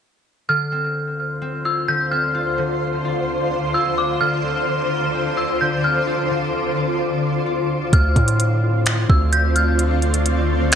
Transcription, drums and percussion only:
7.93 kick loud
7.93 closed hi-hat medium
8.16 kick medium
8.16 closed hi-hat soft
8.28 closed hi-hat medium
8.40 closed hi-hat medium
8.86 finger snap loud
8.86 closed hi-hat medium
9.10 kick loud
9.33 closed hi-hat medium
9.56 closed hi-hat medium
9.79 closed hi-hat medium
10.02 closed hi-hat soft
10.14 closed hi-hat medium
10.26 closed hi-hat medium
10.72 closed hi-hat medium

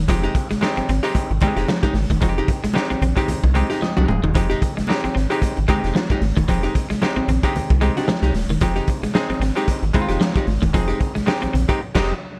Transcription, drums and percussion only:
0.08 kick loud
0.08 closed hi-hat loud
0.08 muted conga medium
0.35 kick loud
0.35 closed hi-hat medium
0.51 snare soft
0.51 closed hi-hat medium
0.61 snare loud
0.61 high conga medium
0.77 closed hi-hat soft
0.89 closed hi-hat medium
1.04 closed hi-hat medium
1.15 kick medium
1.15 closed hi-hat medium
1.15 muted conga medium
1.40 kick loud
1.40 closed hi-hat medium
1.40 low conga medium
1.57 snare soft
1.57 closed hi-hat soft
1.68 snare loud
1.68 high conga medium
1.83 kick loud
1.83 closed hi-hat soft
1.94 snare soft
1.94 open hi-hat medium
1.94 high conga medium
2.09 kick medium
2.09 closed hi-hat medium
2.09 high conga medium
2.20 kick loud
2.20 closed hi-hat medium
2.20 muted conga medium
2.48 kick loud
2.48 closed hi-hat medium
2.64 snare soft
2.64 closed hi-hat medium
2.73 snare loud
2.73 high conga medium
2.90 closed hi-hat soft
3.02 closed hi-hat medium
3.02 low conga medium
3.17 kick medium
3.17 closed hi-hat medium
3.28 closed hi-hat medium
3.28 muted conga medium
3.28 low conga medium
3.44 kick loud
3.55 closed hi-hat medium
3.55 muted conga soft
3.71 snare soft
3.71 closed hi-hat soft
3.82 snare medium
3.82 high conga medium
3.97 high tom medium
4.08 mid tom medium
4.08 high conga medium
4.22 floor tom loud
4.22 high conga medium
4.34 kick loud
4.34 closed hi-hat medium
4.34 muted conga medium
4.51 closed hi-hat soft
4.62 kick medium
4.62 closed hi-hat medium
4.79 snare soft
4.79 closed hi-hat medium
4.87 snare loud
4.87 high conga medium
5.05 closed hi-hat soft
5.17 snare soft
5.17 closed hi-hat medium
5.31 closed hi-hat medium
5.41 kick medium
5.41 closed hi-hat medium
5.41 muted conga medium
5.57 closed hi-hat soft
5.68 kick loud
5.68 closed hi-hat medium
5.68 muted conga soft
5.68 low conga medium
5.84 snare soft
5.84 closed hi-hat soft
5.95 snare loud
5.95 high conga medium
6.10 kick medium
6.22 open hi-hat medium
6.22 high conga medium
6.37 kick medium
6.37 closed hi-hat soft
6.37 high conga medium
6.48 kick loud
6.48 closed hi-hat medium
6.48 muted conga medium
6.64 closed hi-hat soft
6.75 kick loud
6.75 closed hi-hat medium
6.91 snare soft
6.91 closed hi-hat medium
7.02 snare loud
7.02 high conga medium
7.29 closed hi-hat medium
7.29 low conga medium
7.43 kick medium
7.43 closed hi-hat medium
7.55 closed hi-hat medium
7.55 muted conga medium
7.55 low conga medium
7.70 kick loud
7.70 closed hi-hat soft
7.81 closed hi-hat medium
7.81 muted conga soft
7.97 snare soft
7.97 closed hi-hat soft
8.08 snare loud
8.08 high conga medium
8.24 closed hi-hat soft
8.34 snare soft
8.34 open hi-hat medium
8.34 high conga medium
8.50 closed hi-hat medium
8.50 high conga medium
8.61 kick loud
8.61 closed hi-hat medium
8.61 muted conga medium
8.76 closed hi-hat soft
8.87 kick medium
8.87 closed hi-hat medium
9.03 snare soft
9.03 closed hi-hat medium
9.15 snare loud
9.15 high conga medium
9.30 closed hi-hat soft
9.42 snare soft
9.42 closed hi-hat medium
9.56 closed hi-hat medium
9.68 kick medium
9.68 closed hi-hat medium
9.68 muted conga medium
9.83 closed hi-hat soft
9.94 kick loud
9.94 closed hi-hat medium
9.94 low conga medium
10.09 snare soft
10.09 closed hi-hat soft
10.21 snare loud
10.21 high conga medium
10.36 kick loud
10.36 closed hi-hat soft
10.47 open hi-hat medium
10.47 high conga medium
10.62 kick medium
10.62 closed hi-hat medium
10.62 high conga medium
10.74 kick loud
10.74 closed hi-hat medium
10.74 muted conga medium
10.90 closed hi-hat soft
11.01 kick medium
11.01 closed hi-hat medium
11.16 snare soft
11.16 closed hi-hat medium
11.27 snare loud
11.27 high conga medium
11.43 closed hi-hat soft
11.55 closed hi-hat medium
11.55 low conga medium
11.69 kick medium
11.69 closed hi-hat medium
11.95 kick loud
11.95 snare loud
11.95 crash medium

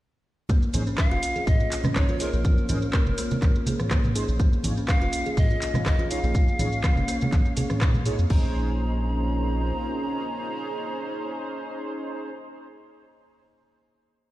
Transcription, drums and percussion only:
0.49 kick loud
0.49 muted conga medium
0.49 high conga loud
0.49 shaker medium
0.63 shaker soft
0.74 mid tom medium
0.74 open hi-hat loud
0.74 high conga medium
0.74 shaker loud
0.87 shaker soft
0.98 kick loud
0.98 cross-stick loud
0.98 clap loud
0.98 muted conga soft
0.98 shaker soft
1.11 shaker soft
1.23 open hi-hat loud
1.23 shaker medium
1.36 muted conga soft
1.36 shaker soft
1.47 kick loud
1.47 mid tom medium
1.47 high conga medium
1.47 low conga loud
1.47 shaker medium
1.60 shaker soft
1.72 clap medium
1.72 open hi-hat medium
1.72 muted conga soft
1.72 shaker medium
1.84 cross-stick medium
1.84 mid tom medium
1.84 high conga medium
1.84 low conga loud
1.84 shaker soft
1.96 kick loud
1.96 cross-stick loud
1.96 clap loud
1.96 shaker medium
2.08 muted conga medium
2.08 high conga medium
2.08 shaker soft
2.20 open hi-hat medium
2.20 shaker medium
2.33 shaker soft
2.45 kick loud
2.45 muted conga soft
2.45 high conga loud
2.45 shaker medium
2.58 shaker soft
2.69 mid tom medium
2.69 open hi-hat medium
2.69 high conga medium
2.69 shaker loud
2.82 shaker soft
2.93 kick loud
2.93 cross-stick loud
2.93 clap loud
2.93 muted conga soft
2.93 high conga medium
2.93 shaker medium
3.06 low conga medium
3.06 shaker soft
3.18 open hi-hat loud
3.18 shaker loud
3.31 muted conga medium
3.31 low conga loud
3.31 shaker soft
3.42 kick loud
3.42 clap soft
3.42 high conga medium
3.42 shaker medium
3.55 shaker soft
3.67 open hi-hat medium
3.67 muted conga soft
3.67 low conga medium
3.67 shaker medium
3.80 cross-stick medium
3.80 mid tom medium
3.80 high conga medium
3.80 shaker soft
3.91 kick loud
3.91 cross-stick loud
3.91 clap medium
3.91 shaker medium
4.04 mid tom medium
4.04 muted conga medium
4.04 high conga medium
4.04 low conga medium
4.04 shaker soft
4.16 open hi-hat medium
4.16 shaker medium
4.28 shaker soft
4.39 kick loud
4.39 muted conga soft
4.39 high conga loud
4.39 shaker medium
4.53 shaker soft
4.64 mid tom medium
4.64 open hi-hat medium
4.64 high conga medium
4.64 shaker loud
4.77 shaker soft
4.88 kick loud
4.88 cross-stick loud
4.88 clap medium
4.88 muted conga soft
4.88 shaker medium
5.01 shaker soft
5.13 open hi-hat medium
5.13 shaker loud
5.26 muted conga soft
5.26 shaker soft
5.37 kick loud
5.37 mid tom medium
5.37 high conga medium
5.37 low conga loud
5.37 shaker medium
5.50 shaker soft
5.62 clap medium
5.62 open hi-hat medium
5.62 muted conga soft
5.62 shaker loud
5.74 cross-stick medium
5.74 mid tom medium
5.74 high conga loud
5.74 low conga loud
5.74 shaker soft
5.86 kick loud
5.86 cross-stick loud
5.86 clap loud
5.86 shaker medium
5.99 muted conga medium
5.99 high conga medium
5.99 shaker soft
6.11 open hi-hat medium
6.11 shaker medium
6.24 shaker soft
6.34 kick loud
6.34 muted conga medium
6.34 high conga loud
6.34 shaker medium
6.48 shaker soft
6.59 mid tom medium
6.59 open hi-hat medium
6.59 high conga medium
6.59 shaker loud
6.72 shaker soft
6.83 kick loud
6.83 cross-stick loud
6.83 clap medium
6.83 muted conga soft
6.83 high conga medium
6.83 shaker medium
6.96 low conga medium
6.96 shaker soft
7.08 open hi-hat medium
7.08 shaker loud
7.21 muted conga soft
7.21 low conga loud
7.21 shaker soft
7.32 kick loud
7.32 clap soft
7.32 high conga medium
7.32 shaker medium
7.45 shaker soft
7.57 open hi-hat medium
7.57 muted conga soft
7.57 low conga loud
7.57 shaker loud
7.70 cross-stick medium
7.70 mid tom loud
7.70 high conga loud
7.70 shaker soft
7.81 kick loud
7.81 cross-stick loud
7.81 clap loud
7.81 shaker medium
7.94 mid tom medium
7.94 muted conga medium
7.94 high conga medium
7.94 low conga medium
7.94 shaker soft
8.06 open hi-hat medium
8.06 shaker medium
8.19 shaker soft
8.30 kick loud
8.30 crash medium

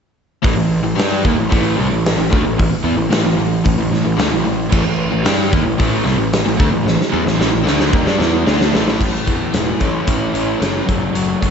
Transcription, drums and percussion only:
0.44 kick loud
0.44 open hi-hat medium
0.99 snare loud
0.99 open hi-hat medium
1.25 kick loud
1.52 kick loud
1.52 open hi-hat medium
2.06 snare medium
2.06 open hi-hat medium
2.33 kick loud
2.60 kick medium
2.60 open hi-hat medium
3.12 snare loud
3.12 open hi-hat medium
3.65 kick medium
3.65 open hi-hat medium
3.94 snare soft
4.19 snare loud
4.19 open hi-hat soft
4.72 kick loud
4.72 crash loud
5.25 snare loud
5.25 open hi-hat medium
5.53 kick loud
5.80 kick medium
5.80 open hi-hat medium
6.06 snare soft
6.33 snare loud
6.33 open hi-hat medium
6.60 kick loud
6.88 snare medium
7.01 snare medium
7.27 snare medium
7.41 snare medium
7.67 snare medium
7.80 snare medium
7.93 kick medium
8.07 snare medium
8.21 snare medium
8.47 snare medium
8.61 snare medium
8.75 snare medium
8.88 snare medium
9.01 kick medium
9.01 crash medium
9.27 kick medium
9.27 closed hi-hat medium
9.54 snare loud
9.54 closed hi-hat medium
9.80 kick medium
9.80 closed hi-hat soft
10.07 kick medium
10.07 closed hi-hat medium
10.35 closed hi-hat medium
10.62 snare medium
10.62 closed hi-hat medium
10.89 kick medium
10.89 closed hi-hat medium
11.15 closed hi-hat medium
11.42 kick medium
11.42 closed hi-hat medium

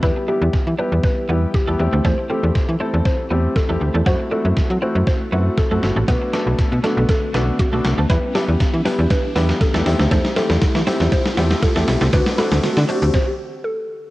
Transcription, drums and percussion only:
0.03 kick loud
0.03 snare medium
0.53 kick loud
0.53 snare medium
1.04 kick loud
1.04 snare medium
1.54 kick loud
1.54 snare medium
2.05 kick loud
2.05 snare medium
2.55 kick loud
2.55 snare medium
3.05 kick loud
3.05 snare medium
3.56 kick loud
3.56 snare medium
4.06 kick loud
4.06 snare medium
4.57 kick loud
4.57 snare medium
5.07 kick loud
5.07 snare medium
5.58 kick loud
5.58 snare medium
5.83 snare medium
6.08 kick loud
6.08 snare medium
6.08 closed hi-hat medium
6.33 snare medium
6.33 closed hi-hat soft
6.59 kick loud
6.59 snare medium
6.59 closed hi-hat medium
6.84 snare medium
6.84 closed hi-hat medium
7.09 kick loud
7.09 snare medium
7.09 closed hi-hat medium
7.34 snare medium
7.34 closed hi-hat medium
7.59 kick loud
7.59 snare medium
7.59 closed hi-hat medium
7.85 snare medium
7.85 closed hi-hat medium
8.10 kick loud
8.10 snare medium
8.10 closed hi-hat medium
8.35 snare medium
8.35 open hi-hat medium
8.60 kick loud
8.60 snare loud
8.60 closed hi-hat medium
8.85 snare medium
8.85 open hi-hat medium
9.10 kick loud
9.10 snare loud
9.10 closed hi-hat medium
9.36 snare loud
9.36 open hi-hat medium
9.49 snare loud
9.61 kick loud
9.61 snare loud
9.61 closed hi-hat medium
9.74 snare loud
9.86 snare loud
9.86 open hi-hat medium
9.99 snare loud
10.11 kick loud
10.11 snare loud
10.11 closed hi-hat medium
10.25 snare loud
10.36 snare loud
10.36 open hi-hat medium
10.50 snare loud
10.62 kick loud
10.62 snare loud
10.62 closed hi-hat medium
10.75 snare loud
10.87 snare loud
10.87 open hi-hat medium
11.00 snare loud
11.12 kick loud
11.12 snare loud
11.12 closed hi-hat medium
11.25 snare loud
11.37 snare loud
11.37 open hi-hat medium
11.51 snare loud
11.62 kick loud
11.62 snare loud
11.62 closed hi-hat medium
11.76 snare loud
11.88 snare loud
11.88 open hi-hat medium
12.01 snare loud
12.13 kick loud
12.13 snare loud
12.13 closed hi-hat medium
12.13 shaker medium
12.26 snare loud
12.26 shaker medium
12.38 snare loud
12.38 open hi-hat medium
12.38 shaker soft
12.52 snare loud
12.52 shaker medium
12.63 snare loud
12.63 closed hi-hat medium
12.63 shaker medium
12.77 snare loud
12.77 shaker medium
12.89 open hi-hat medium
12.89 shaker medium
13.02 shaker medium
13.14 kick loud
13.14 snare medium

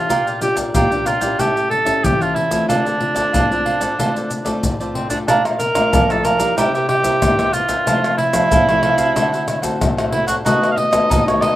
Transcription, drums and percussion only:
0.10 pandeiro medium
0.10 maracas medium
0.10 surdo soft
0.27 pandeiro soft
0.27 maracas soft
0.42 pandeiro medium
0.42 maracas medium
0.57 pandeiro medium
0.57 maracas medium
0.57 surdo soft
0.75 pandeiro medium
0.75 maracas medium
0.75 surdo loud
0.92 pandeiro soft
0.92 maracas soft
1.06 pandeiro medium
1.06 maracas medium
1.21 pandeiro medium
1.21 maracas medium
1.21 surdo soft
1.39 pandeiro medium
1.39 maracas medium
1.39 surdo medium
1.57 pandeiro soft
1.57 maracas soft
1.71 pandeiro soft
1.86 pandeiro medium
1.86 maracas medium
1.86 surdo soft
2.04 pandeiro medium
2.04 maracas medium
2.04 surdo medium
2.21 pandeiro soft
2.21 maracas soft
2.36 pandeiro soft
2.51 pandeiro medium
2.51 maracas medium
2.51 surdo soft
2.70 pandeiro medium
2.70 maracas medium
2.70 surdo soft
2.86 pandeiro soft
2.86 maracas soft
3.01 pandeiro soft
3.16 pandeiro medium
3.16 maracas medium
3.16 surdo soft
3.34 pandeiro medium
3.34 maracas medium
3.34 surdo loud
3.52 pandeiro soft
3.52 maracas soft
3.66 pandeiro soft
3.81 pandeiro medium
3.81 maracas medium
3.81 surdo soft
4.00 pandeiro medium
4.00 maracas medium
4.00 surdo medium
4.16 pandeiro soft
4.16 maracas soft
4.31 pandeiro soft
4.31 maracas medium
4.46 pandeiro medium
4.46 maracas medium
4.46 surdo soft
4.63 pandeiro medium
4.63 maracas medium
4.63 surdo medium
4.81 pandeiro soft
4.81 maracas soft
4.95 pandeiro medium
5.10 pandeiro medium
5.10 maracas medium
5.10 surdo soft
5.28 pandeiro medium
5.28 tamborim medium
5.28 maracas medium
5.28 surdo medium
5.45 pandeiro soft
5.45 tamborim medium
5.45 maracas soft
5.60 pandeiro medium
5.60 maracas medium
5.75 pandeiro medium
5.75 tamborim medium
5.75 maracas medium
5.75 surdo soft
5.93 pandeiro medium
5.93 maracas medium
5.93 surdo loud
6.10 pandeiro soft
6.10 tamborim medium
6.10 maracas soft
6.25 pandeiro medium
6.25 tamborim medium
6.25 maracas medium
6.40 pandeiro medium
6.40 maracas medium
6.40 surdo soft
6.58 pandeiro medium
6.58 tamborim medium
6.58 maracas medium
6.58 surdo soft
6.75 pandeiro soft
6.75 maracas soft
6.89 pandeiro medium
6.89 tamborim medium
7.04 pandeiro medium
7.04 maracas medium
7.04 surdo soft
7.22 pandeiro medium
7.22 tamborim medium
7.22 maracas medium
7.22 surdo medium
7.39 pandeiro soft
7.39 tamborim medium
7.39 maracas soft
7.54 pandeiro medium
7.54 maracas medium
7.69 pandeiro medium
7.69 maracas medium
7.69 surdo soft
7.87 pandeiro medium
7.87 tamborim medium
7.87 maracas medium
7.87 surdo medium
8.04 pandeiro soft
8.04 tamborim medium
8.04 maracas soft
8.18 pandeiro soft
8.33 pandeiro medium
8.33 tamborim medium
8.33 maracas medium
8.33 surdo soft
8.52 pandeiro medium
8.52 maracas medium
8.52 surdo loud
8.69 pandeiro soft
8.69 tamborim medium
8.69 maracas soft
8.83 pandeiro medium
8.83 tamborim medium
8.98 pandeiro medium
8.98 maracas medium
8.98 surdo soft
9.16 pandeiro medium
9.16 tamborim medium
9.16 maracas medium
9.16 surdo medium
9.34 pandeiro soft
9.34 maracas soft
9.48 pandeiro medium
9.48 tamborim medium
9.48 maracas medium
9.63 pandeiro medium
9.63 maracas medium
9.63 surdo soft
9.81 pandeiro medium
9.81 tamborim medium
9.81 maracas medium
9.81 surdo medium
9.98 pandeiro soft
9.98 tamborim medium
9.98 maracas soft
10.12 pandeiro medium
10.28 pandeiro medium
10.28 maracas medium
10.28 surdo soft
10.46 pandeiro medium
10.46 tamborim medium
10.46 maracas medium
10.46 surdo medium
10.63 pandeiro soft
10.63 tamborim medium
10.63 maracas soft
10.78 pandeiro medium
10.93 pandeiro medium
10.93 tamborim medium
10.93 maracas medium
10.93 surdo soft
11.11 pandeiro medium
11.11 maracas medium
11.11 surdo loud
11.28 pandeiro soft
11.28 tamborim medium
11.28 maracas soft
11.42 pandeiro medium
11.42 tamborim medium

